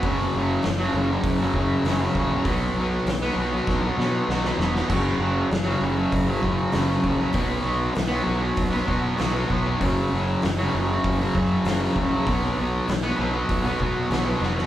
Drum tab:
CC |----------------|----------------|x---------------|----------------|
HH |o---o---o---o---|o---o-----------|----o---o---o---|o---o---o---o---|
SD |----o-------o---|----o---o-o-oooo|----o-------o---|----o-------o---|
BD |o-------o-o---o-|o-------o-------|o-------o-o---o-|o-------o-o---o-|

CC |----------------|----------------|
HH |o---o---o---o---|o---o---o---o---|
SD |----o-------o---|----o-------o-oo|
BD |o-------o-o---o-|o-------o-o-----|